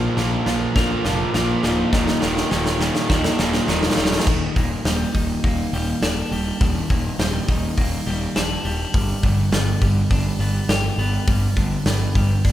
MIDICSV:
0, 0, Header, 1, 5, 480
1, 0, Start_track
1, 0, Tempo, 584226
1, 1586, Time_signature, 4, 2, 24, 8
1, 10287, End_track
2, 0, Start_track
2, 0, Title_t, "Clean electric guitar"
2, 0, Program_c, 0, 27
2, 0, Note_on_c, 0, 46, 72
2, 0, Note_on_c, 0, 58, 64
2, 0, Note_on_c, 0, 63, 79
2, 139, Note_off_c, 0, 58, 0
2, 139, Note_on_c, 0, 58, 66
2, 384, Note_on_c, 0, 65, 72
2, 408, Note_off_c, 0, 63, 0
2, 625, Note_on_c, 0, 70, 82
2, 852, Note_off_c, 0, 65, 0
2, 862, Note_on_c, 0, 65, 67
2, 864, Note_off_c, 0, 46, 0
2, 1101, Note_off_c, 0, 58, 0
2, 1104, Note_on_c, 0, 58, 75
2, 1347, Note_on_c, 0, 63, 70
2, 1583, Note_on_c, 0, 39, 80
2, 1585, Note_off_c, 0, 65, 0
2, 2065, Note_off_c, 0, 58, 0
2, 2068, Note_on_c, 0, 51, 73
2, 2307, Note_on_c, 0, 58, 73
2, 2541, Note_off_c, 0, 70, 0
2, 2544, Note_on_c, 0, 62, 80
2, 2569, Note_off_c, 0, 63, 0
2, 2781, Note_off_c, 0, 58, 0
2, 2787, Note_off_c, 0, 39, 0
2, 2791, Note_on_c, 0, 58, 70
2, 3019, Note_off_c, 0, 51, 0
2, 3029, Note_on_c, 0, 51, 71
2, 3272, Note_on_c, 0, 55, 79
2, 3507, Note_off_c, 0, 62, 0
2, 3509, Note_off_c, 0, 51, 0
2, 3510, Note_on_c, 0, 39, 77
2, 3511, Note_off_c, 0, 55, 0
2, 3511, Note_off_c, 0, 58, 0
2, 3753, Note_on_c, 0, 46, 77
2, 3992, Note_on_c, 0, 55, 75
2, 4231, Note_on_c, 0, 51, 70
2, 4468, Note_on_c, 0, 58, 78
2, 4710, Note_off_c, 0, 39, 0
2, 4713, Note_off_c, 0, 55, 0
2, 4716, Note_on_c, 0, 55, 72
2, 4951, Note_off_c, 0, 46, 0
2, 4952, Note_on_c, 0, 62, 87
2, 5191, Note_off_c, 0, 55, 0
2, 5194, Note_on_c, 0, 55, 73
2, 5430, Note_off_c, 0, 51, 0
2, 5431, Note_on_c, 0, 39, 77
2, 5669, Note_off_c, 0, 58, 0
2, 5671, Note_on_c, 0, 46, 78
2, 5904, Note_off_c, 0, 55, 0
2, 5907, Note_on_c, 0, 55, 70
2, 6150, Note_on_c, 0, 51, 75
2, 6174, Note_off_c, 0, 62, 0
2, 6387, Note_on_c, 0, 58, 75
2, 6624, Note_off_c, 0, 55, 0
2, 6628, Note_on_c, 0, 55, 73
2, 6629, Note_off_c, 0, 39, 0
2, 6869, Note_off_c, 0, 46, 0
2, 6869, Note_on_c, 0, 62, 84
2, 7103, Note_off_c, 0, 55, 0
2, 7106, Note_on_c, 0, 55, 81
2, 7343, Note_on_c, 0, 43, 82
2, 7347, Note_off_c, 0, 58, 0
2, 7348, Note_off_c, 0, 51, 0
2, 7585, Note_on_c, 0, 50, 82
2, 7818, Note_off_c, 0, 55, 0
2, 7822, Note_on_c, 0, 59, 79
2, 8066, Note_on_c, 0, 55, 84
2, 8306, Note_off_c, 0, 62, 0
2, 8306, Note_on_c, 0, 62, 81
2, 8537, Note_off_c, 0, 59, 0
2, 8544, Note_off_c, 0, 43, 0
2, 8546, Note_on_c, 0, 59, 73
2, 8784, Note_on_c, 0, 67, 88
2, 8785, Note_off_c, 0, 50, 0
2, 9018, Note_off_c, 0, 59, 0
2, 9027, Note_on_c, 0, 59, 72
2, 9266, Note_on_c, 0, 43, 81
2, 9505, Note_off_c, 0, 62, 0
2, 9505, Note_on_c, 0, 50, 83
2, 9737, Note_off_c, 0, 59, 0
2, 9747, Note_on_c, 0, 59, 74
2, 9984, Note_off_c, 0, 55, 0
2, 9988, Note_on_c, 0, 55, 77
2, 10226, Note_on_c, 0, 62, 80
2, 10287, Note_off_c, 0, 43, 0
2, 10287, Note_off_c, 0, 50, 0
2, 10287, Note_off_c, 0, 55, 0
2, 10287, Note_off_c, 0, 59, 0
2, 10287, Note_off_c, 0, 62, 0
2, 10287, Note_off_c, 0, 67, 0
2, 10287, End_track
3, 0, Start_track
3, 0, Title_t, "Overdriven electric guitar"
3, 0, Program_c, 1, 29
3, 0, Note_on_c, 1, 46, 78
3, 0, Note_on_c, 1, 53, 83
3, 0, Note_on_c, 1, 58, 80
3, 131, Note_off_c, 1, 46, 0
3, 134, Note_off_c, 1, 53, 0
3, 140, Note_on_c, 1, 46, 86
3, 144, Note_on_c, 1, 53, 89
3, 146, Note_off_c, 1, 58, 0
3, 149, Note_on_c, 1, 58, 91
3, 370, Note_off_c, 1, 46, 0
3, 373, Note_off_c, 1, 53, 0
3, 379, Note_on_c, 1, 46, 84
3, 383, Note_off_c, 1, 58, 0
3, 383, Note_on_c, 1, 53, 88
3, 387, Note_on_c, 1, 58, 88
3, 607, Note_off_c, 1, 46, 0
3, 611, Note_off_c, 1, 53, 0
3, 617, Note_on_c, 1, 46, 89
3, 621, Note_off_c, 1, 58, 0
3, 621, Note_on_c, 1, 53, 96
3, 624, Note_on_c, 1, 58, 101
3, 851, Note_off_c, 1, 46, 0
3, 854, Note_off_c, 1, 53, 0
3, 860, Note_on_c, 1, 46, 89
3, 864, Note_on_c, 1, 53, 80
3, 866, Note_off_c, 1, 58, 0
3, 869, Note_on_c, 1, 58, 95
3, 1090, Note_off_c, 1, 46, 0
3, 1094, Note_off_c, 1, 53, 0
3, 1100, Note_on_c, 1, 46, 88
3, 1104, Note_on_c, 1, 53, 96
3, 1105, Note_off_c, 1, 58, 0
3, 1108, Note_on_c, 1, 58, 109
3, 1333, Note_off_c, 1, 46, 0
3, 1336, Note_off_c, 1, 53, 0
3, 1343, Note_on_c, 1, 46, 84
3, 1346, Note_on_c, 1, 53, 81
3, 1348, Note_off_c, 1, 58, 0
3, 1351, Note_on_c, 1, 58, 90
3, 1570, Note_off_c, 1, 46, 0
3, 1571, Note_off_c, 1, 53, 0
3, 1582, Note_on_c, 1, 39, 88
3, 1586, Note_on_c, 1, 46, 97
3, 1588, Note_off_c, 1, 58, 0
3, 1592, Note_on_c, 1, 51, 98
3, 1812, Note_off_c, 1, 39, 0
3, 1817, Note_off_c, 1, 46, 0
3, 1821, Note_off_c, 1, 51, 0
3, 1821, Note_on_c, 1, 39, 76
3, 1827, Note_on_c, 1, 46, 79
3, 1831, Note_on_c, 1, 51, 88
3, 2049, Note_off_c, 1, 39, 0
3, 2053, Note_off_c, 1, 46, 0
3, 2057, Note_off_c, 1, 51, 0
3, 2059, Note_on_c, 1, 39, 89
3, 2063, Note_on_c, 1, 46, 99
3, 2067, Note_on_c, 1, 51, 92
3, 2292, Note_off_c, 1, 39, 0
3, 2297, Note_off_c, 1, 46, 0
3, 2302, Note_off_c, 1, 51, 0
3, 2302, Note_on_c, 1, 39, 85
3, 2306, Note_on_c, 1, 46, 95
3, 2312, Note_on_c, 1, 51, 92
3, 2530, Note_off_c, 1, 39, 0
3, 2535, Note_off_c, 1, 46, 0
3, 2537, Note_off_c, 1, 51, 0
3, 2540, Note_on_c, 1, 39, 102
3, 2545, Note_on_c, 1, 46, 93
3, 2547, Note_on_c, 1, 51, 111
3, 2770, Note_off_c, 1, 39, 0
3, 2774, Note_off_c, 1, 46, 0
3, 2780, Note_off_c, 1, 51, 0
3, 2780, Note_on_c, 1, 39, 92
3, 2784, Note_on_c, 1, 46, 98
3, 2790, Note_on_c, 1, 51, 92
3, 3010, Note_off_c, 1, 39, 0
3, 3015, Note_off_c, 1, 46, 0
3, 3019, Note_off_c, 1, 51, 0
3, 3020, Note_on_c, 1, 39, 94
3, 3025, Note_on_c, 1, 46, 106
3, 3029, Note_on_c, 1, 51, 110
3, 3250, Note_off_c, 1, 39, 0
3, 3253, Note_off_c, 1, 46, 0
3, 3258, Note_off_c, 1, 51, 0
3, 3260, Note_on_c, 1, 39, 91
3, 3263, Note_on_c, 1, 46, 90
3, 3268, Note_on_c, 1, 51, 96
3, 3490, Note_off_c, 1, 39, 0
3, 3492, Note_off_c, 1, 46, 0
3, 3494, Note_off_c, 1, 51, 0
3, 10287, End_track
4, 0, Start_track
4, 0, Title_t, "Fingered electric bass"
4, 0, Program_c, 2, 33
4, 137, Note_on_c, 2, 34, 93
4, 295, Note_off_c, 2, 34, 0
4, 379, Note_on_c, 2, 34, 90
4, 536, Note_off_c, 2, 34, 0
4, 621, Note_on_c, 2, 34, 90
4, 778, Note_off_c, 2, 34, 0
4, 860, Note_on_c, 2, 29, 88
4, 1018, Note_off_c, 2, 29, 0
4, 1103, Note_on_c, 2, 34, 94
4, 1259, Note_off_c, 2, 34, 0
4, 1344, Note_on_c, 2, 26, 90
4, 1501, Note_off_c, 2, 26, 0
4, 1583, Note_on_c, 2, 27, 93
4, 1740, Note_off_c, 2, 27, 0
4, 1825, Note_on_c, 2, 27, 86
4, 1981, Note_off_c, 2, 27, 0
4, 2065, Note_on_c, 2, 27, 96
4, 2378, Note_off_c, 2, 27, 0
4, 2544, Note_on_c, 2, 39, 87
4, 2701, Note_off_c, 2, 39, 0
4, 2785, Note_on_c, 2, 27, 92
4, 2942, Note_off_c, 2, 27, 0
4, 3028, Note_on_c, 2, 27, 98
4, 3185, Note_off_c, 2, 27, 0
4, 3267, Note_on_c, 2, 27, 93
4, 3424, Note_off_c, 2, 27, 0
4, 3508, Note_on_c, 2, 27, 97
4, 3667, Note_off_c, 2, 27, 0
4, 3746, Note_on_c, 2, 27, 93
4, 3906, Note_off_c, 2, 27, 0
4, 3982, Note_on_c, 2, 27, 91
4, 4144, Note_off_c, 2, 27, 0
4, 4229, Note_on_c, 2, 27, 93
4, 4388, Note_off_c, 2, 27, 0
4, 4468, Note_on_c, 2, 27, 93
4, 4628, Note_off_c, 2, 27, 0
4, 4705, Note_on_c, 2, 27, 96
4, 4866, Note_off_c, 2, 27, 0
4, 4942, Note_on_c, 2, 27, 92
4, 5104, Note_off_c, 2, 27, 0
4, 5184, Note_on_c, 2, 27, 95
4, 5345, Note_off_c, 2, 27, 0
4, 5429, Note_on_c, 2, 27, 103
4, 5588, Note_off_c, 2, 27, 0
4, 5668, Note_on_c, 2, 27, 93
4, 5827, Note_off_c, 2, 27, 0
4, 5906, Note_on_c, 2, 27, 98
4, 6066, Note_off_c, 2, 27, 0
4, 6148, Note_on_c, 2, 27, 98
4, 6308, Note_off_c, 2, 27, 0
4, 6388, Note_on_c, 2, 27, 96
4, 6547, Note_off_c, 2, 27, 0
4, 6627, Note_on_c, 2, 27, 100
4, 6787, Note_off_c, 2, 27, 0
4, 6867, Note_on_c, 2, 27, 90
4, 7026, Note_off_c, 2, 27, 0
4, 7103, Note_on_c, 2, 27, 94
4, 7264, Note_off_c, 2, 27, 0
4, 7346, Note_on_c, 2, 31, 98
4, 7506, Note_off_c, 2, 31, 0
4, 7585, Note_on_c, 2, 31, 96
4, 7745, Note_off_c, 2, 31, 0
4, 7822, Note_on_c, 2, 31, 106
4, 7983, Note_off_c, 2, 31, 0
4, 8064, Note_on_c, 2, 31, 103
4, 8224, Note_off_c, 2, 31, 0
4, 8303, Note_on_c, 2, 31, 97
4, 8463, Note_off_c, 2, 31, 0
4, 8537, Note_on_c, 2, 31, 93
4, 8699, Note_off_c, 2, 31, 0
4, 8777, Note_on_c, 2, 31, 92
4, 8939, Note_off_c, 2, 31, 0
4, 9018, Note_on_c, 2, 31, 97
4, 9180, Note_off_c, 2, 31, 0
4, 9264, Note_on_c, 2, 31, 93
4, 9423, Note_off_c, 2, 31, 0
4, 9503, Note_on_c, 2, 31, 89
4, 9663, Note_off_c, 2, 31, 0
4, 9740, Note_on_c, 2, 31, 99
4, 9900, Note_off_c, 2, 31, 0
4, 9984, Note_on_c, 2, 31, 104
4, 10143, Note_off_c, 2, 31, 0
4, 10227, Note_on_c, 2, 31, 91
4, 10287, Note_off_c, 2, 31, 0
4, 10287, End_track
5, 0, Start_track
5, 0, Title_t, "Drums"
5, 140, Note_on_c, 9, 38, 71
5, 222, Note_off_c, 9, 38, 0
5, 380, Note_on_c, 9, 38, 83
5, 463, Note_off_c, 9, 38, 0
5, 622, Note_on_c, 9, 36, 111
5, 625, Note_on_c, 9, 38, 86
5, 704, Note_off_c, 9, 36, 0
5, 707, Note_off_c, 9, 38, 0
5, 861, Note_on_c, 9, 38, 91
5, 943, Note_off_c, 9, 38, 0
5, 1103, Note_on_c, 9, 38, 95
5, 1185, Note_off_c, 9, 38, 0
5, 1342, Note_on_c, 9, 38, 86
5, 1424, Note_off_c, 9, 38, 0
5, 1584, Note_on_c, 9, 36, 108
5, 1584, Note_on_c, 9, 38, 94
5, 1666, Note_off_c, 9, 36, 0
5, 1666, Note_off_c, 9, 38, 0
5, 1705, Note_on_c, 9, 38, 97
5, 1787, Note_off_c, 9, 38, 0
5, 1824, Note_on_c, 9, 38, 104
5, 1907, Note_off_c, 9, 38, 0
5, 1948, Note_on_c, 9, 38, 90
5, 2030, Note_off_c, 9, 38, 0
5, 2064, Note_on_c, 9, 38, 92
5, 2146, Note_off_c, 9, 38, 0
5, 2183, Note_on_c, 9, 38, 98
5, 2265, Note_off_c, 9, 38, 0
5, 2305, Note_on_c, 9, 38, 97
5, 2387, Note_off_c, 9, 38, 0
5, 2423, Note_on_c, 9, 38, 100
5, 2505, Note_off_c, 9, 38, 0
5, 2545, Note_on_c, 9, 36, 104
5, 2546, Note_on_c, 9, 38, 103
5, 2627, Note_off_c, 9, 36, 0
5, 2628, Note_off_c, 9, 38, 0
5, 2665, Note_on_c, 9, 38, 115
5, 2747, Note_off_c, 9, 38, 0
5, 2785, Note_on_c, 9, 38, 114
5, 2867, Note_off_c, 9, 38, 0
5, 2903, Note_on_c, 9, 38, 100
5, 2986, Note_off_c, 9, 38, 0
5, 3025, Note_on_c, 9, 38, 109
5, 3107, Note_off_c, 9, 38, 0
5, 3145, Note_on_c, 9, 38, 119
5, 3207, Note_off_c, 9, 38, 0
5, 3207, Note_on_c, 9, 38, 125
5, 3263, Note_off_c, 9, 38, 0
5, 3263, Note_on_c, 9, 38, 105
5, 3329, Note_off_c, 9, 38, 0
5, 3329, Note_on_c, 9, 38, 109
5, 3388, Note_off_c, 9, 38, 0
5, 3388, Note_on_c, 9, 38, 115
5, 3449, Note_off_c, 9, 38, 0
5, 3449, Note_on_c, 9, 38, 111
5, 3507, Note_on_c, 9, 36, 114
5, 3507, Note_on_c, 9, 49, 119
5, 3531, Note_off_c, 9, 38, 0
5, 3589, Note_off_c, 9, 49, 0
5, 3590, Note_off_c, 9, 36, 0
5, 3748, Note_on_c, 9, 36, 93
5, 3748, Note_on_c, 9, 46, 69
5, 3830, Note_off_c, 9, 36, 0
5, 3830, Note_off_c, 9, 46, 0
5, 3988, Note_on_c, 9, 38, 109
5, 3988, Note_on_c, 9, 46, 79
5, 4070, Note_off_c, 9, 38, 0
5, 4070, Note_off_c, 9, 46, 0
5, 4228, Note_on_c, 9, 36, 84
5, 4230, Note_on_c, 9, 46, 62
5, 4311, Note_off_c, 9, 36, 0
5, 4313, Note_off_c, 9, 46, 0
5, 4469, Note_on_c, 9, 36, 91
5, 4471, Note_on_c, 9, 46, 90
5, 4551, Note_off_c, 9, 36, 0
5, 4553, Note_off_c, 9, 46, 0
5, 4709, Note_on_c, 9, 46, 67
5, 4792, Note_off_c, 9, 46, 0
5, 4950, Note_on_c, 9, 38, 114
5, 4950, Note_on_c, 9, 46, 92
5, 5032, Note_off_c, 9, 38, 0
5, 5032, Note_off_c, 9, 46, 0
5, 5192, Note_on_c, 9, 46, 68
5, 5274, Note_off_c, 9, 46, 0
5, 5430, Note_on_c, 9, 36, 117
5, 5431, Note_on_c, 9, 46, 91
5, 5512, Note_off_c, 9, 36, 0
5, 5513, Note_off_c, 9, 46, 0
5, 5670, Note_on_c, 9, 36, 93
5, 5671, Note_on_c, 9, 46, 73
5, 5752, Note_off_c, 9, 36, 0
5, 5753, Note_off_c, 9, 46, 0
5, 5911, Note_on_c, 9, 38, 106
5, 5911, Note_on_c, 9, 46, 93
5, 5994, Note_off_c, 9, 38, 0
5, 5994, Note_off_c, 9, 46, 0
5, 6150, Note_on_c, 9, 36, 89
5, 6151, Note_on_c, 9, 46, 74
5, 6232, Note_off_c, 9, 36, 0
5, 6233, Note_off_c, 9, 46, 0
5, 6389, Note_on_c, 9, 36, 89
5, 6389, Note_on_c, 9, 46, 92
5, 6471, Note_off_c, 9, 36, 0
5, 6471, Note_off_c, 9, 46, 0
5, 6629, Note_on_c, 9, 46, 76
5, 6711, Note_off_c, 9, 46, 0
5, 6868, Note_on_c, 9, 38, 126
5, 6868, Note_on_c, 9, 46, 90
5, 6950, Note_off_c, 9, 38, 0
5, 6950, Note_off_c, 9, 46, 0
5, 7107, Note_on_c, 9, 46, 67
5, 7189, Note_off_c, 9, 46, 0
5, 7345, Note_on_c, 9, 46, 91
5, 7347, Note_on_c, 9, 36, 121
5, 7427, Note_off_c, 9, 46, 0
5, 7429, Note_off_c, 9, 36, 0
5, 7586, Note_on_c, 9, 36, 98
5, 7586, Note_on_c, 9, 46, 74
5, 7668, Note_off_c, 9, 36, 0
5, 7668, Note_off_c, 9, 46, 0
5, 7826, Note_on_c, 9, 38, 107
5, 7826, Note_on_c, 9, 46, 84
5, 7908, Note_off_c, 9, 38, 0
5, 7908, Note_off_c, 9, 46, 0
5, 8065, Note_on_c, 9, 36, 87
5, 8066, Note_on_c, 9, 46, 64
5, 8147, Note_off_c, 9, 36, 0
5, 8148, Note_off_c, 9, 46, 0
5, 8303, Note_on_c, 9, 46, 89
5, 8304, Note_on_c, 9, 36, 98
5, 8385, Note_off_c, 9, 46, 0
5, 8386, Note_off_c, 9, 36, 0
5, 8545, Note_on_c, 9, 46, 70
5, 8627, Note_off_c, 9, 46, 0
5, 8785, Note_on_c, 9, 38, 112
5, 8785, Note_on_c, 9, 46, 87
5, 8867, Note_off_c, 9, 38, 0
5, 8867, Note_off_c, 9, 46, 0
5, 9029, Note_on_c, 9, 46, 68
5, 9111, Note_off_c, 9, 46, 0
5, 9264, Note_on_c, 9, 36, 117
5, 9265, Note_on_c, 9, 46, 87
5, 9346, Note_off_c, 9, 36, 0
5, 9347, Note_off_c, 9, 46, 0
5, 9502, Note_on_c, 9, 46, 75
5, 9504, Note_on_c, 9, 36, 96
5, 9585, Note_off_c, 9, 46, 0
5, 9586, Note_off_c, 9, 36, 0
5, 9743, Note_on_c, 9, 38, 107
5, 9743, Note_on_c, 9, 46, 91
5, 9825, Note_off_c, 9, 38, 0
5, 9825, Note_off_c, 9, 46, 0
5, 9986, Note_on_c, 9, 36, 93
5, 9986, Note_on_c, 9, 46, 67
5, 10068, Note_off_c, 9, 36, 0
5, 10069, Note_off_c, 9, 46, 0
5, 10227, Note_on_c, 9, 36, 94
5, 10230, Note_on_c, 9, 46, 91
5, 10287, Note_off_c, 9, 36, 0
5, 10287, Note_off_c, 9, 46, 0
5, 10287, End_track
0, 0, End_of_file